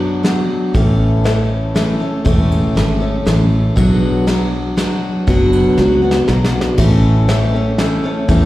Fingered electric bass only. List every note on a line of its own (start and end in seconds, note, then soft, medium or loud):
0.00 0.34 F#2 medium
0.75 1.85 A1 medium
2.26 2.63 E1 medium
2.76 3.19 G#1 medium
3.27 3.70 A1 medium
3.77 4.87 B1 medium
5.28 5.64 F#1 medium
5.78 6.21 C#2 medium
6.29 6.71 B1 medium
6.78 7.88 A1 medium
8.29 8.45 E2 medium